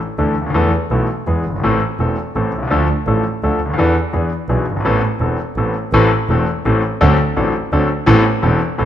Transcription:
0.18 double bass D2, grand piano D2 D3 E3 A3 D4 A4
0.36 double bass D2
0.42 grand piano C#2
0.46 grand piano D2
0.50 grand piano D#2
0.54 grand piano E2 E3 A3 B3 A4, double bass E2
0.91 double bass B1, grand piano B1 B2 E3 A3 B3 A4
1.27 double bass E2, grand piano E2 E3 G#3 B3 G#4
1.46 grand piano F#1, double bass G1
1.56 grand piano G1 G#1
1.63 double bass A1, grand piano A1 A2 E3 A3 C4 A4
1.99 double bass E1, grand piano E1 E2 E3 A3 C4 A4
2.35 grand piano A1 A2 E3 A3 C4 A4, double bass A1
2.54 double bass C2
2.58 grand piano B1
2.62 grand piano C2
2.67 grand piano C#2 D2 D3 F3 A3, double bass D2
2.71 grand piano D4 A4
3.07 double bass A1, grand piano A1 A2 F3 A3 D4 A4
3.43 double bass D2, grand piano D2 D3 F3 A3 D4 A4
3.60 double bass D2
3.65 grand piano C#2
3.70 grand piano D2 D#2
3.78 double bass E2, grand piano E2 E3 B3 D4 A4
4.13 grand piano E2 E3 B3 D4 G#4, double bass E2
4.49 double bass B1, grand piano B1 B2 E3 B3 D4 G#4
4.67 double bass G1
4.72 grand piano F#1
4.76 grand piano G1 G#1
4.85 grand piano A1 A2 E3 B3 C4 A4, double bass A1
5.20 double bass E1, grand piano E1 E2 E3 B3 C4 A4
5.56 double bass A1, grand piano A1 A2 E3 B3 C4 A4
5.93 double bass A1, grand piano A1 A2 E3 A3 C4 A4
6.29 double bass E1, grand piano E1 E2 E3 A3 C4 A4
6.65 grand piano A1 A2 E3 A3 C4 A4, double bass A1
7.01 grand piano D2 D3 F#3 C4 D4 A4, double bass D2
7.36 grand piano A1 A2 F#3 C4 D4 A4, double bass A1
7.72 double bass D2, grand piano D2 D3 F#3 C4 D4 A4
8.06 grand piano A1 A2 E3 B3 C4 A4, double bass A1
8.42 grand piano E1 E2 E3 B3 C4 A4, double bass E1
8.78 grand piano A1 A2 E3 B3 C4 A4, double bass A1

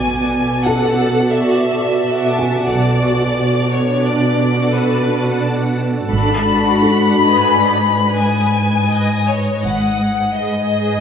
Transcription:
Already playing: cello section B2, synth texture F#4 A4 D5, violin section G#5, impact
0.64 felt piano A4 A5, violin section F#5
1.34 violin section E5
2.39 felt piano G#5
2.70 double bass section B1, cello section B2, synth texture D4 F#4 A4, violin section D5
3.73 violin section C#5
4.06 violin section D5
4.74 violin section B4
6.11 double bass section G#1, cello section G#2, synth texture B4 D#5 G#5, violin section B5
6.82 felt piano A4
8.20 violin section G#5
9.28 violin section C#5
9.64 double bass section G#1, cello section G#2, synth texture G#4 D#5 G#5, violin section F#5
10.35 violin section D#5

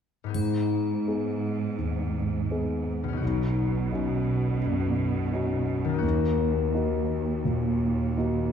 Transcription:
0.24 harp G#2 B3
0.28 harp D#4 G#4
0.34 grand piano G#2, cello section G#2, triangle
1.07 grand piano B3 D#4 G#4
1.79 grand piano D#2
2.51 grand piano B3 D#4 G#4
3.04 harp B2
3.08 harp C#4
3.13 harp D#4
3.17 harp F#4
3.21 grand piano B1, cello section B2
3.92 grand piano C#4 D#4 F#4
4.62 grand piano F#2
5.32 grand piano C#4 D#4 F#4
5.85 harp D#3
5.89 harp A#3
5.94 harp D#4
5.98 harp F#4
6.03 grand piano D#2, cello section D#2
6.74 grand piano A#3 D#4 F#4
7.45 grand piano A#2
8.17 grand piano A#3 D#4 F#4

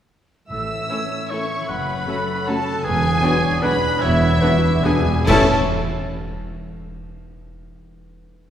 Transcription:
0.49 double bass section A1, timpani A2, cello section A2, harp A2, clarinet A4, oboe E5, flute section E6, violin section E6
0.60 harp E3
0.69 harp A3
0.79 harp C#4
0.89 trombone section E3 A3, viola section A3 C#4, french horn section C#4 A4, violin section E4 A4, harp E4, clarinet C#5
1.00 harp A4
1.11 harp C#5
1.30 trombone section E3 A3, viola section A3 C#4, french horn section C#4 A4, violin section E4 A4 C#6, harp A4, oboe C#5, clarinet E5, flute section C#6
1.41 harp C#4
1.50 harp A3
1.60 harp E3
1.68 double bass section F#1, harp F#2, cello section F#2, oboe B4, clarinet F#5, violin section B5, flute section B5
1.78 harp C#3
1.87 harp A3
1.97 harp C#4
2.07 trombone section F#3 A3, viola section A3 C#4, french horn section C#4 F#4, harp F#4, violin section F#4 A4, clarinet A4
2.17 harp A4
2.27 harp C#5
2.37 harp F#5
2.46 trombone section F#3 A3, viola section A3 C#4, french horn section C#4 F#4, violin section F#4 A4 A5, harp A4, oboe A4, flute section A5
2.56 harp C#4
2.66 harp A3
2.76 harp C#3
2.84 double bass section E1, harp E2, cello section E2, timpani E2, oboe G#4, clarinet B4, violin section G#5, flute section G#5
2.92 timpani E2, harp B2
2.99 timpani E2
3.03 timpani E2, harp B3
3.12 timpani E2, harp D4
3.21 timpani E2, trombone section F#3 B3, viola section B3 D4, french horn section D4 F#4, harp F#4, violin section F#4, clarinet C#5
3.27 timpani E2
3.32 timpani E2, harp B4
3.42 timpani E2, harp D5
3.50 timpani E2, harp F#5
3.58 timpani E2, viola section B3 D4, french horn section D4 F#4, harp B4, oboe B4, clarinet B4
3.63 timpani E2, trombone section F#3 B3, violin section F#4 B5, flute section B5
3.73 timpani E2, harp D4
3.81 timpani E2, harp B3
3.88 timpani E2
3.92 timpani E2, harp B2
4.01 double bass section E1, cello section E2, harp E2, timpani E2, oboe E4, clarinet C#5, flute section E5, violin section E5
4.09 timpani E2, harp B3
4.17 timpani E2, harp B2
4.24 timpani E2
4.31 timpani E2, harp D4
4.40 timpani E2, trombone section F#3 B3, viola section B3 D4, french horn section D4 F#4, harp F#4, violin section F#4, clarinet B4
4.48 timpani E2, harp B4
4.55 timpani E2
4.62 timpani E2, harp D5
4.72 timpani E2, harp F#5
4.80 timpani E2, harp B4, violin section G#5
4.84 trombone section F#3 B3, viola section B3 D4, french horn section D4 F#4, violin section F#4, clarinet G#4, oboe G#4, flute section G#5
4.89 timpani E2
4.95 timpani E2, harp D4
5.05 timpani E2, harp B3
5.13 timpani E2, harp B2
5.19 harp A2 A3
5.25 double bass section A1, cello section A2, timpani A2, trombone section E3 A3, harp C#4 E4, clarinet C#4, french horn section C#4 A4, viola section C#4 E4, violin section E4 A4 A5, oboe A4, flute section A5, concert bass drum, crash
5.31 harp A4 E5

